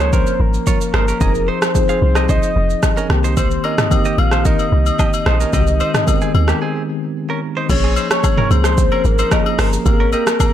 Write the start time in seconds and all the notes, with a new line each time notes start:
Already playing: C#2 F3 A#3 C#4 A#4 C#5
0.00 D#4 C5, shaker
0.13 C#4 A#4 C5, kick, shaker
0.27 shaker
0.40 G#1 A#4
0.54 shaker
0.67 F4 C#5, kick, shaker
0.81 shaker
0.94 G1 D#4 A#4 C5, cross-stick
1.08 C#4 A#4, shaker
1.20 F1 F3 C4 D#4 G#4 D#5, kick, shaker
1.35 shaker
1.48 D#4 C5
1.62 cross-stick, shaker
1.74 F3 C4 D#4 G#4, kick, shaker
1.89 G#4 C5 F5, shaker
2.02 C2
2.15 G4 D#5, cross-stick, shaker
2.29 D#4 C5 D#5, kick, shaker
2.43 shaker
2.56 F1
2.70 shaker
2.83 kick, cross-stick, shaker
2.97 C#4 A#4, shaker
3.09 C2 D#3 A#3 C4 G4, cross-stick
3.24 D#4 C5, shaker
3.37 D#4 C5, kick, high agogo, shaker
3.51 shaker
3.64 C#4 A#4 D#5, high agogo
3.78 cross-stick, mid tom, shaker
3.90 D#3 A#3 C4 G4, kick, high agogo, shaker
4.05 G4 D#5, shaker
4.18 A#1 F5, high agogo
4.31 D#4 C5, cross-stick, shaker
4.45 D#4 A#4 D#5, kick, shaker
4.59 high agogo, shaker
4.72 C2
4.86 high agogo, shaker
4.99 G4 D#5, kick, low woodblock, shaker
5.14 high agogo, shaker
5.26 A#1 D#4 C5 D#5, cross-stick
5.41 C#4 A#4, shaker
5.52 C2 D#3 G#3 C4 F#4 G4 D#5, kick, high agogo, shaker
5.61 G4
5.67 shaker
5.80 D#4 C5, high agogo, shaker
5.94 cross-stick, mid tom, shaker
6.06 D#3 G#3 B3 D#4, kick, high agogo, shaker
6.14 C4
6.21 C4 G#4, shaker
6.34 D#2, high agogo
6.48 A#3 G4, cross-stick, shaker
6.62 C4 G#4
7.30 C#4 A#4
7.57 D#4 C5
7.68 A#1 F3 A#3 C#4 G#4 C#5, kick, crash, high agogo, shaker
7.84 C4 G#4
7.96 D#4 C5, high agogo, shaker
8.11 C#5, cross-stick, shaker
8.24 kick, high agogo, low woodblock, shaker
8.37 C#4 A#4, mid tom
8.49 C#2 F3 A#3 C4 G#4 C5, high agogo, shaker
8.58 C#4
8.64 D#4 C5, cross-stick, shaker
8.78 kick, shaker
8.92 C#4 A#4, high agogo
9.05 G#1 A#4, shaker
9.19 D#4 C5, high agogo, shaker
9.31 F3 A#3 C#4 G#4 A#4 D#5, kick, cross-stick, shaker
9.46 high agogo
9.59 G1 D#4 A#4 C5, cross-stick, open hi-hat, shaker
9.73 shaker
9.85 G#1 A#3 C4 G4 A#4, kick, high agogo, shaker
9.94 G#4
10.00 C#4 A#4
10.13 G4 A#4 D#5, high agogo, shaker
10.27 cross-stick, shaker
10.40 kick, high agogo, low woodblock, shaker